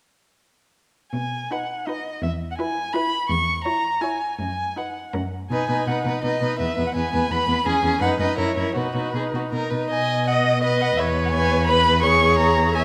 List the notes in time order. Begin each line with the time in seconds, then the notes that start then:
1.13 B2 G#5
1.51 D#4 B4 F#5
1.87 D#4 B4 D#5
2.22 E2 E5
2.51 F#5
2.58 E4 B4 G#5
2.93 E4 B4 B5
3.30 E2 C#6
3.64 E4 C#5 A#5
4.01 E4 C#5 G#5
4.39 F#2 G#5
4.76 D#4 B4 F#5
5.14 F#2 C#4 A#4
5.50 B2 D#4 B4 G#5
5.69 B2 D#4 B4
5.87 B2 D#4 B4 F#5
6.05 B2 D#4 B4
6.22 B2 D#4 B4 D#5
6.41 B2 D#4 B4
6.59 E2 B3 B4 E5
6.77 E2 B3 B4
6.86 F#5
6.94 E2 B3 B4 G#5
7.13 E2 B3 B4
7.30 E2 B3 B4 B5
7.47 E2 B3 B4
7.66 E2 C#4 G#4 G#5
7.83 E2 C#4 G#4
8.01 F#2 D#4 B4 F#5
8.19 F#2 D#4 B4 D#5
8.38 F#2 E4 A#4 C#5
8.57 F#2 E4 A#4
8.75 B2 D#4 F#4 B4
8.94 B2 D#4 F#4
9.14 B2 D#4 G#4
9.33 B2 D#4 F#4
9.52 B2 D#4 A#4
9.70 B2 D#4 B4
9.90 B2 D#5 G#5
10.27 D#5 F#5
10.61 B4 D#5
10.80 F#5
10.97 E2 B4 C#5 E5
11.25 F#5
11.32 B4 G#5
11.67 B4 B5
12.02 G#4 C#5 C#6
12.39 A#5
12.75 C#5 E5 G#5